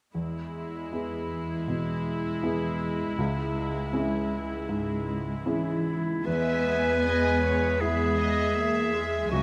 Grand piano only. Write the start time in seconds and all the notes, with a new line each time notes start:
0.15 E2
0.93 B3 E4 G#4
1.68 B2
2.43 B3 E4 G#4
3.18 C#2
3.93 C#4 E4 G#4
4.69 G#2
5.46 C#4 E4 G#4
6.27 E2
7.05 B3
7.82 E4 G#4
9.32 C#2